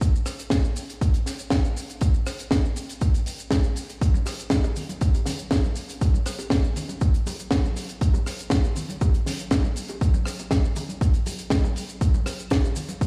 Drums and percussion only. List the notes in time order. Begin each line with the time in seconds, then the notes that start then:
0.01 kick, closed hi-hat, shaker
0.15 shaker
0.26 cross-stick, open hi-hat, shaker
0.39 closed hi-hat, shaker
0.50 kick, snare, closed hi-hat, shaker
0.64 shaker
0.76 open hi-hat, shaker
0.89 closed hi-hat, shaker
1.01 kick, closed hi-hat, shaker
1.14 closed hi-hat, shaker
1.26 snare, open hi-hat, shaker
1.39 closed hi-hat, shaker
1.50 kick, snare, closed hi-hat, shaker
1.65 shaker
1.77 open hi-hat, shaker
1.89 closed hi-hat, shaker
2.01 kick, closed hi-hat, shaker
2.14 shaker
2.26 cross-stick, open hi-hat, shaker
2.39 closed hi-hat, shaker
2.51 kick, snare, closed hi-hat, shaker
2.65 shaker
2.76 open hi-hat, shaker
2.89 closed hi-hat, shaker
3.01 kick, closed hi-hat, shaker
3.14 closed hi-hat, shaker
3.26 open hi-hat, shaker
3.38 closed hi-hat, shaker
3.51 kick, snare, closed hi-hat, shaker
3.64 shaker
3.76 open hi-hat, shaker
3.89 closed hi-hat, shaker
4.01 kick, closed hi-hat, shaker
4.14 high conga, shaker
4.26 cross-stick, open hi-hat, high bongo, shaker
4.39 closed hi-hat, shaker
4.50 kick, snare, closed hi-hat, high conga, shaker
4.64 high bongo, shaker
4.76 open hi-hat, low conga, shaker
4.89 closed hi-hat, high conga, shaker
5.01 kick, closed hi-hat, shaker
5.14 closed hi-hat, high bongo, shaker
5.26 snare, open hi-hat, high conga, low conga, shaker
5.39 closed hi-hat, shaker
5.51 kick, snare, closed hi-hat, high bongo, shaker
5.64 high conga, shaker
5.76 open hi-hat, shaker
5.89 closed hi-hat, shaker
6.01 kick, closed hi-hat, high bongo, shaker
6.14 high conga, shaker
6.26 cross-stick, open hi-hat, shaker
6.39 closed hi-hat, high bongo, shaker
6.50 kick, snare, closed hi-hat, high conga, shaker
6.64 shaker
6.76 open hi-hat, low conga, shaker
6.89 closed hi-hat, high bongo, high conga, shaker
7.01 kick, closed hi-hat, shaker
7.14 closed hi-hat, shaker
7.26 open hi-hat, high bongo, high conga, shaker
7.39 closed hi-hat, shaker
7.51 kick, snare, closed hi-hat, shaker
7.64 high conga, shaker
7.76 open hi-hat, high bongo, shaker
7.89 closed hi-hat, shaker
8.01 kick, closed hi-hat, shaker
8.14 high bongo, high conga, shaker
8.26 cross-stick, open hi-hat, shaker
8.39 closed hi-hat, shaker
8.50 kick, snare, closed hi-hat, high conga, shaker
8.64 high bongo, shaker
8.76 open hi-hat, low conga, shaker
8.89 closed hi-hat, high conga, shaker
9.01 kick, closed hi-hat, high bongo, shaker
9.14 closed hi-hat, shaker
9.26 snare, open hi-hat, high conga, low conga, shaker
9.39 closed hi-hat, shaker
9.51 kick, snare, closed hi-hat, high bongo, shaker
9.64 high conga, shaker
9.76 open hi-hat, shaker
9.88 closed hi-hat, high bongo, shaker
10.01 kick, closed hi-hat, shaker
10.02 shaker
10.14 high conga, shaker
10.25 cross-stick, open hi-hat, shaker
10.27 shaker
10.39 closed hi-hat, high bongo, shaker
10.51 kick, snare, closed hi-hat, high conga, shaker
10.64 shaker
10.76 open hi-hat, high bongo, low conga, shaker
10.89 closed hi-hat, high conga, shaker
11.01 kick, closed hi-hat, shaker
11.02 shaker
11.14 closed hi-hat, shaker
11.26 open hi-hat, high bongo, high conga, shaker
11.38 closed hi-hat, shaker
11.50 kick, snare, closed hi-hat, shaker
11.64 high bongo, high conga, shaker
11.76 open hi-hat, shaker
11.89 closed hi-hat, shaker
12.01 kick, closed hi-hat, shaker
12.14 high conga, shaker
12.26 cross-stick, open hi-hat, high bongo, shaker
12.39 closed hi-hat, shaker
12.50 kick, snare, closed hi-hat, high conga, shaker
12.64 high bongo, shaker
12.76 open hi-hat, low conga, shaker
12.89 closed hi-hat, high conga, shaker
13.01 kick, closed hi-hat, shaker